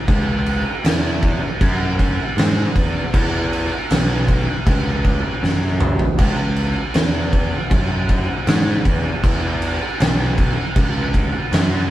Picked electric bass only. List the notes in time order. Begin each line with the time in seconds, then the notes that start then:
0.08 C#2
0.84 E2
1.61 F#2
2.37 G#2
2.75 E2
3.14 E2
3.91 B1
4.66 C#2
5.43 F#2
6.18 C#2
6.95 E2
7.71 F#2
8.47 G#2
8.85 E2
9.23 E2
10.00 B1
10.76 C#2
11.52 F#2